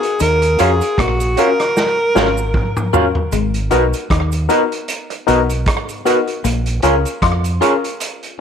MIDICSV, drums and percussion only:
0, 0, Header, 1, 2, 480
1, 0, Start_track
1, 0, Tempo, 780234
1, 122, Time_signature, 4, 2, 24, 8
1, 5168, End_track
2, 0, Start_track
2, 0, Title_t, "Drums"
2, 19, Note_on_c, 9, 42, 53
2, 80, Note_off_c, 9, 42, 0
2, 120, Note_on_c, 9, 69, 67
2, 123, Note_on_c, 9, 42, 79
2, 182, Note_off_c, 9, 69, 0
2, 185, Note_off_c, 9, 42, 0
2, 257, Note_on_c, 9, 42, 51
2, 319, Note_off_c, 9, 42, 0
2, 361, Note_on_c, 9, 42, 74
2, 363, Note_on_c, 9, 69, 50
2, 422, Note_off_c, 9, 42, 0
2, 424, Note_off_c, 9, 69, 0
2, 499, Note_on_c, 9, 69, 55
2, 502, Note_on_c, 9, 42, 43
2, 560, Note_off_c, 9, 69, 0
2, 563, Note_off_c, 9, 42, 0
2, 603, Note_on_c, 9, 36, 100
2, 606, Note_on_c, 9, 42, 72
2, 608, Note_on_c, 9, 37, 96
2, 664, Note_off_c, 9, 36, 0
2, 667, Note_off_c, 9, 42, 0
2, 670, Note_off_c, 9, 37, 0
2, 739, Note_on_c, 9, 42, 57
2, 742, Note_on_c, 9, 69, 61
2, 800, Note_off_c, 9, 42, 0
2, 804, Note_off_c, 9, 69, 0
2, 844, Note_on_c, 9, 42, 77
2, 849, Note_on_c, 9, 69, 46
2, 906, Note_off_c, 9, 42, 0
2, 911, Note_off_c, 9, 69, 0
2, 982, Note_on_c, 9, 42, 46
2, 983, Note_on_c, 9, 37, 51
2, 1044, Note_off_c, 9, 42, 0
2, 1045, Note_off_c, 9, 37, 0
2, 1088, Note_on_c, 9, 38, 54
2, 1088, Note_on_c, 9, 69, 65
2, 1149, Note_off_c, 9, 69, 0
2, 1150, Note_off_c, 9, 38, 0
2, 1330, Note_on_c, 9, 38, 63
2, 1330, Note_on_c, 9, 69, 41
2, 1391, Note_off_c, 9, 38, 0
2, 1391, Note_off_c, 9, 69, 0
2, 1461, Note_on_c, 9, 69, 63
2, 1522, Note_off_c, 9, 69, 0
2, 1562, Note_on_c, 9, 45, 79
2, 1564, Note_on_c, 9, 36, 111
2, 1624, Note_off_c, 9, 45, 0
2, 1625, Note_off_c, 9, 36, 0
2, 1702, Note_on_c, 9, 45, 70
2, 1703, Note_on_c, 9, 69, 47
2, 1764, Note_off_c, 9, 45, 0
2, 1765, Note_off_c, 9, 69, 0
2, 1807, Note_on_c, 9, 43, 90
2, 1807, Note_on_c, 9, 69, 70
2, 1868, Note_off_c, 9, 43, 0
2, 1869, Note_off_c, 9, 69, 0
2, 1938, Note_on_c, 9, 43, 72
2, 2000, Note_off_c, 9, 43, 0
2, 2043, Note_on_c, 9, 69, 74
2, 2045, Note_on_c, 9, 42, 76
2, 2105, Note_off_c, 9, 69, 0
2, 2107, Note_off_c, 9, 42, 0
2, 2179, Note_on_c, 9, 42, 53
2, 2240, Note_off_c, 9, 42, 0
2, 2282, Note_on_c, 9, 42, 72
2, 2285, Note_on_c, 9, 69, 51
2, 2343, Note_off_c, 9, 42, 0
2, 2347, Note_off_c, 9, 69, 0
2, 2419, Note_on_c, 9, 69, 59
2, 2423, Note_on_c, 9, 42, 47
2, 2481, Note_off_c, 9, 69, 0
2, 2484, Note_off_c, 9, 42, 0
2, 2523, Note_on_c, 9, 36, 88
2, 2526, Note_on_c, 9, 42, 80
2, 2528, Note_on_c, 9, 37, 89
2, 2585, Note_off_c, 9, 36, 0
2, 2587, Note_off_c, 9, 42, 0
2, 2589, Note_off_c, 9, 37, 0
2, 2657, Note_on_c, 9, 69, 66
2, 2661, Note_on_c, 9, 42, 55
2, 2719, Note_off_c, 9, 69, 0
2, 2723, Note_off_c, 9, 42, 0
2, 2765, Note_on_c, 9, 69, 48
2, 2766, Note_on_c, 9, 42, 74
2, 2826, Note_off_c, 9, 69, 0
2, 2828, Note_off_c, 9, 42, 0
2, 2904, Note_on_c, 9, 42, 47
2, 2965, Note_off_c, 9, 42, 0
2, 3003, Note_on_c, 9, 42, 92
2, 3010, Note_on_c, 9, 69, 60
2, 3064, Note_off_c, 9, 42, 0
2, 3071, Note_off_c, 9, 69, 0
2, 3139, Note_on_c, 9, 42, 46
2, 3201, Note_off_c, 9, 42, 0
2, 3247, Note_on_c, 9, 42, 73
2, 3249, Note_on_c, 9, 69, 39
2, 3309, Note_off_c, 9, 42, 0
2, 3311, Note_off_c, 9, 69, 0
2, 3380, Note_on_c, 9, 42, 47
2, 3384, Note_on_c, 9, 69, 65
2, 3442, Note_off_c, 9, 42, 0
2, 3445, Note_off_c, 9, 69, 0
2, 3483, Note_on_c, 9, 42, 93
2, 3485, Note_on_c, 9, 36, 113
2, 3492, Note_on_c, 9, 37, 107
2, 3544, Note_off_c, 9, 42, 0
2, 3546, Note_off_c, 9, 36, 0
2, 3554, Note_off_c, 9, 37, 0
2, 3622, Note_on_c, 9, 42, 46
2, 3623, Note_on_c, 9, 69, 44
2, 3683, Note_off_c, 9, 42, 0
2, 3685, Note_off_c, 9, 69, 0
2, 3729, Note_on_c, 9, 69, 59
2, 3731, Note_on_c, 9, 42, 78
2, 3790, Note_off_c, 9, 69, 0
2, 3792, Note_off_c, 9, 42, 0
2, 3860, Note_on_c, 9, 42, 49
2, 3922, Note_off_c, 9, 42, 0
2, 3966, Note_on_c, 9, 42, 78
2, 3966, Note_on_c, 9, 69, 72
2, 4027, Note_off_c, 9, 69, 0
2, 4028, Note_off_c, 9, 42, 0
2, 4097, Note_on_c, 9, 42, 51
2, 4158, Note_off_c, 9, 42, 0
2, 4198, Note_on_c, 9, 42, 76
2, 4209, Note_on_c, 9, 69, 49
2, 4260, Note_off_c, 9, 42, 0
2, 4270, Note_off_c, 9, 69, 0
2, 4339, Note_on_c, 9, 42, 43
2, 4345, Note_on_c, 9, 69, 62
2, 4401, Note_off_c, 9, 42, 0
2, 4406, Note_off_c, 9, 69, 0
2, 4442, Note_on_c, 9, 36, 87
2, 4443, Note_on_c, 9, 42, 81
2, 4445, Note_on_c, 9, 37, 101
2, 4504, Note_off_c, 9, 36, 0
2, 4505, Note_off_c, 9, 42, 0
2, 4507, Note_off_c, 9, 37, 0
2, 4578, Note_on_c, 9, 42, 57
2, 4584, Note_on_c, 9, 69, 65
2, 4640, Note_off_c, 9, 42, 0
2, 4646, Note_off_c, 9, 69, 0
2, 4686, Note_on_c, 9, 42, 77
2, 4689, Note_on_c, 9, 69, 48
2, 4747, Note_off_c, 9, 42, 0
2, 4751, Note_off_c, 9, 69, 0
2, 4826, Note_on_c, 9, 42, 49
2, 4887, Note_off_c, 9, 42, 0
2, 4924, Note_on_c, 9, 42, 93
2, 4927, Note_on_c, 9, 69, 62
2, 4986, Note_off_c, 9, 42, 0
2, 4988, Note_off_c, 9, 69, 0
2, 5062, Note_on_c, 9, 42, 44
2, 5124, Note_off_c, 9, 42, 0
2, 5168, End_track
0, 0, End_of_file